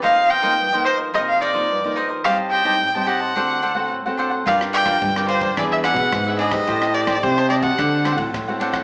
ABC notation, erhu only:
X:1
M:4/4
L:1/16
Q:1/4=108
K:Cdor
V:1 name="Erhu"
f2 g4 c2 e f d4 z2 | f2 g3- g/2 g/2 ^f6 z4 | f2 g4 c2 d =e ^f4 _e2- | e2 d2 c2 d ^f4 z4 z |]